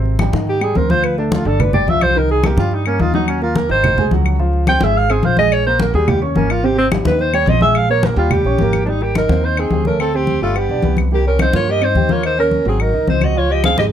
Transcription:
Already playing: G#1 C3 C4 C5
0.05 high conga
0.19 G3 G4 G5, high conga, claves
0.33 G#2 D#3 D#4 D#5, high conga
0.48 G4, high conga
0.61 G3 G4 G#4 G5, high conga, claves
0.75 D2 C4 A#4 C5 C6, high conga
0.90 F3 F4 C5 F5, high conga
1.04 B4, high conga, claves
1.18 A3 D4 A4 A5, high conga
1.32 F4, high conga
1.45 G1 D3 D4 A4 D5, high conga
1.60 B4, high conga, low conga, claves
1.73 G3 G4 D5 G5, high conga, low conga
1.87 C2 F3 F4 E5 F5, high conga
2.01 C5, high conga, claves
2.16 D#3 D#4 A#4 D#5, high conga
2.29 G#4, high conga
2.43 A#3 G4 A#4 A#5, high conga, claves
2.57 G2 G3 F4 G4 G5, high conga
2.71 D#4, high conga
2.85 A#3 C#4 A#4 A#5, high conga, claves
3.00 D#2 D#4 F4 D#5 D#6, high conga
3.14 F#3 D#4 F#4 F#5, high conga
3.28 C#4, high conga, claves
3.41 A#3 F4 A#4 A#5, high conga
3.56 A#4, high conga
3.69 G#1 D#3 D#4 C5 D#5, high conga
3.84 high conga, low conga, claves
3.97 C2 G#3 G#4 G#5, high conga, low conga
4.11 C#2 F#3 F#4 F#5, high conga
4.26 claves
4.39 F3 F4 F5, high conga
4.53 high conga
4.67 C4 C5 G5 C6, high conga, claves
4.81 G#1 G#3 G#4 E5 G#5, high conga
4.95 F5, high conga
5.09 C4 G#4 C5 C6, high conga, claves
5.23 A#1 F4 C5 F5 F6, high conga
5.37 G#3 G#4 D#5 G#5, high conga
5.51 C#5, high conga, claves
5.65 A#3 A#4 C5 A#5, high conga
5.80 A#4, high conga
5.94 D#2 G3 G4 G#4 G5, high conga
6.08 G4, high conga, low conga, claves
6.22 A#3 C#4 C#5 C#6, high conga
6.35 G#1 A#3 C#4 A#4 A#5, high conga
6.50 F4, claves
6.63 C3 C4 G4 C5, high conga
6.78 C4, high conga
6.92 G3 G4 G5, high conga, claves
7.05 D#2 D#3 D#4 B4 D#5, high conga
7.19 C5, high conga
7.33 G3 G4 C#5 G5, high conga, claves
7.46 A#1 C4 C5 D#5 C6, high conga
7.61 G#3 G#4 E5 G#5, high conga
7.75 F5, high conga, claves
7.89 A#3 A#4 C#5 A#5, high conga
8.03 A#4, high conga
8.16 D#2 G3 F4 G4 G5, high conga
8.31 G4, high conga, low conga, claves
8.44 A#1 C#4 C#5 C#6, high conga
8.58 G#1 A#3 A#4 A#5, high conga
8.73 high conga, claves
8.84 F3 G3 D4, high conga
8.88 D#4 G4
9.01 A#3 G4, high conga
9.15 D#4 A#4 D#5, high conga, claves
9.29 D#2 C4 C5, high conga
9.43 D#4 C5, high conga
9.57 C4 D#4 G#4 D#5, high conga, claves
9.70 D2 G4 G5, high conga
9.85 A3 C#4 A4 A#4, high conga
9.99 C4 A4, high conga, claves
10.14 C4 G4 C5, high conga
10.27 high conga
10.41 G1 G3 A3 F4 G4
10.55 B3 G4, high conga, claves
10.69 B1 D4 D5, high conga
10.82 C2 B3 B4, high conga
10.97 high conga, claves
11.11 G3 A#3 G4, high conga
11.25 C#4 A#4, high conga
11.39 C4 D#4 C5, high conga, claves
11.53 G2 A#3 F4 A#4 C#5, high conga
11.67 G4 D#5, high conga
11.81 C4 D#4 C5, high conga, claves
11.95 D#2 G4 G5, high conga
12.09 A#3 F4 A#4 C#5, high conga
12.23 D#4 C5, high conga, claves
12.38 C#4 A#4 C#5, high conga
12.51 high conga
12.65 G#1 F#3 C4 F#4 G#4
12.80 D#4 A#4, high conga, claves
12.93 C2 D#4 D#5, high conga
13.07 C#2 C4 D#4 C5, high conga
13.21 F#4 D#5, high conga, claves
13.36 F3 F4 C#5, high conga
13.50 G4 D#5, high conga
13.64 C4 G#4 C5 F5, high conga, claves
13.77 G#1 G#3 G4 G#4 D#5, high conga

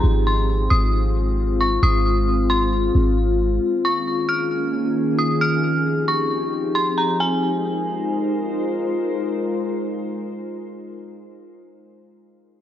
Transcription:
0.04 G#1 G#3 C4 F4
0.27 C6
0.70 G#1 D#6
1.61 C#6
1.83 G#1 D#6
2.50 C6
2.95 G#1
3.62 D#3 A#3 C#4 G#4
3.85 C#6
4.29 F6
5.19 D#6
5.41 F3 C4 D#4 G4 F6
6.08 C#6
6.75 C6
6.98 A#5
7.20 G#3 D#4 F4 A#4 C5 G#5

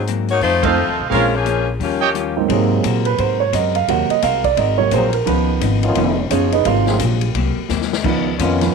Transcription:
Already playing: G#2
0.07 G#2 F#3 A#3 C4, closed hi-hat
0.28 A#3 D#4 F#4 C#5, open hi-hat
0.41 F2 D#3 A3 C4 D#4 F4 C5, kick, open hi-hat
0.62 F3 A3 C4 D#4 F4 A4 C5 D#5 F5, kick, ride
0.76 F2 D#3 A3 C4
0.88 D#2
0.99 C2
1.10 A#1 A#2 F3 G#3 C4 C#4 F4 G#4 A#4 C#5 F5, kick, open hi-hat
1.35 F3 A#3 C#4 G#4
1.45 A#2 F3 G#3 C#4, closed hi-hat
1.80 D#2 D#3 F3 G3 A#3 C#4 F4 G4, kick, open hi-hat
2.00 G4 C#5 D#5 G5
2.14 D#3 G3 C#4 F4, closed hi-hat
2.36 G#2 F#3 A#3 C4 D#4
2.48 G#2 C3 F#3 G#3 A#3 C4 F#4 G#4 A#4, kick, ride
2.83 A#2 G#3 C4 F#4 A#4, kick, hi-hat pedal, ride
3.05 B4, ride
3.18 G#2 G#3 C4 F#4 A#4 C5, kick, ride
3.40 C#5
3.53 F#2 G#3 C4 F#4 A#4 D#5, kick, hi-hat pedal, ride
3.75 F5, ride
3.88 D#2 C3 F#3 G#3 A#3 C4 F#4 A#4 F#5, kick, ride
4.09 D#5, muted upright bass stroke, ride
4.22 C2 G#3 C4 F#4 A#4 F5, kick, hi-hat pedal, ride
4.44 D5, kick, ride
4.57 G#1 G#3 C4 F#4 A#4 D#5, kick, ride
4.78 C3 F#3 A#3 C#5
4.91 A#1 F#3 G#3 A#3 C4 F#4 G#4 A#4 C5, kick, hi-hat pedal, ride
5.13 A#4, ride
5.26 C#2 C#3 D#3 F3 B3 D#4 B4, kick, ride
5.61 G#1 C#3 F3 B3 D#4, kick, hi-hat pedal, ride
5.82 D#3 B3 C#4 F4, ride
5.95 F1 C#3 D#3 F3 B3 D#4, kick, ride
6.30 F#1 C#3 F3 B3 C#4 D#4 F4 G#4 C#5, kick, hi-hat pedal, ride
6.52 D#4 G#4 B4 D#5, ride
6.65 G#1 G#2 C3 F#3 A#3 C4 F4 F5, kick, ride
6.86 F#3 A#3 C4 G#4, snare
6.99 A#1 G#2 F#3 A#3 C4, kick, hi-hat pedal, ride
7.21 ride
7.35 C2 G#2 F#3 A#3 C4, kick, ride
7.57 muted upright bass stroke
7.69 D#2 G#2 F#3 A#3 C4, snare, hi-hat pedal
7.81 snare
7.93 snare
8.03 C#2 C#3 D#3 F3 B3 D#4, kick, crash
8.39 F2 C#3 D#3 F3 B3 C#4 D#4 F4, kick, hi-hat pedal, ride
8.61 D#3 F3 B3, snare, ride

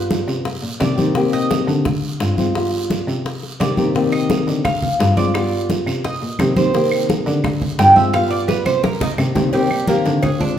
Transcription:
Already playing: G2 G3 B3 F4
0.11 high bongo, high conga, short guiro
0.27 C3, high bongo, high conga, short guiro
0.45 muted nylon-string guitar stroke, high bongo, high conga, long guiro
0.62 A#2, high bongo, high conga
0.80 C3 D#3 A#3 C4 G4 D5, high bongo, low bongo, high conga, short guiro
0.98 D#3 A#3 C4 G4, high bongo, high conga, short guiro
1.15 C3 D#3 A#3 C4 G4, high bongo, high conga, long guiro
1.33 D#5, high conga
1.51 high bongo, high conga, short guiro
1.67 D3, short guiro
1.85 muted nylon-string guitar stroke, high bongo, high conga, low conga, long guiro
2.03 high conga
2.20 G2 D3 G#3 C4 F4, high bongo, low bongo, high conga, short guiro
2.38 G#3 C4 F4, high conga, short guiro
2.55 G3 B3 F4, high bongo, high conga, long guiro
2.74 high conga
2.90 high bongo, high conga, short guiro
3.07 C3, high bongo, high conga, short guiro
3.25 muted nylon-string guitar stroke, high bongo, high conga, long guiro
3.43 high bongo, high conga
3.60 C3 D#3 A#3 C4 G4 D5, high bongo, low bongo, high conga, short guiro
3.77 D#3 A#3 C4 G4, high bongo, high conga, short guiro
3.95 C3 D#3 A#3 C4 G4, high bongo, high conga, long guiro
4.12 D#5, high conga, claves
4.30 high bongo, high conga, short guiro
4.47 D3, short guiro
4.65 F5, muted nylon-string guitar stroke, high bongo, high conga, low conga, long guiro, claves
4.82 high conga, low conga
5.00 G2 D3 G#3 C4 F4, high bongo, low bongo, high conga, short guiro
5.17 G#3 C4 F4 D5, high conga, short guiro
5.34 G3 B3 F4, high bongo, high conga, long guiro, claves
5.52 high conga
5.70 high bongo, high conga, short guiro
5.87 C3, high bongo, high conga, short guiro, claves
6.04 D#5, muted nylon-string guitar stroke, high bongo, high conga, long guiro
6.22 A#2, high bongo, high conga
6.39 C3 D#3 A#3 C4 G4, high bongo, low bongo, high conga, short guiro, claves
6.56 D#3 A#3 C4 G4 C5, high bongo, high conga, short guiro
6.73 C3 D#3 A#3 C4 G4, high bongo, high conga, long guiro
6.92 high conga, claves
7.09 high bongo, high conga, short guiro
7.26 D3, short guiro
7.44 muted nylon-string guitar stroke, high bongo, high conga, low conga, long guiro, claves
7.62 high conga, low conga
7.79 G2 D3 G#3 C4 F4 G5, high bongo, low bongo, high conga, short guiro
7.95 G#3 C4 F4 E5, high conga, short guiro
8.13 G3 B3 F4 F5, high bongo, high conga, long guiro, claves
8.30 D5, high conga
8.48 B4, high bongo, high conga, short guiro
8.66 C3 C5, high bongo, high conga, short guiro, claves
8.83 A#4, muted nylon-string guitar stroke, high bongo, high conga, long guiro
9.01 D#4, high bongo, low conga
9.18 C3 D#3 A#3 C4 G4, low bongo, short guiro, claves
9.35 D#3 A#3 C4 G4, low bongo, low conga, short guiro
9.53 C3 D#3 G3 A#3 C4 G4, cowbell, high conga, long guiro
9.70 A#3 C4 G4, high conga, claves
9.87 C3 D#3 A#3 C4 G4, cowbell, high conga, short guiro
10.05 D3, cowbell, short guiro
10.22 G#4, muted nylon-string guitar stroke, cowbell, high conga, low conga, long guiro, claves
10.39 G#3 C4 D4 F4, high conga, low conga

